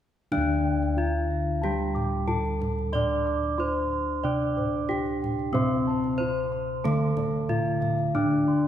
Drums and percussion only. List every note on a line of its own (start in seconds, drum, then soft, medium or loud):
0.32 kendang high medium
0.32 kendang low medium
0.83 kendang slap soft
1.64 kendang high medium
1.79 kendang slap soft
1.96 kendang low medium
2.28 kendang low medium
2.45 kendang slap soft
2.61 kendang high medium
2.61 kendang low soft
2.79 kendang slap soft
2.95 kendang low medium
3.44 kendang slap soft
4.42 kendang slap soft
4.58 kendang low medium
4.91 kendang low medium
5.06 kendang slap soft
5.24 kendang high soft
5.24 kendang low medium
5.39 kendang slap soft
5.55 kendang high soft
5.55 kendang low medium
6.04 kendang slap soft
6.85 kendang high medium
7.01 kendang slap soft
7.17 kendang high medium
7.17 kendang low soft
7.49 kendang low medium
7.66 kendang slap soft
7.82 kendang high soft
7.82 kendang low medium
7.99 kendang slap soft
8.16 kendang low medium
8.31 kendang slap soft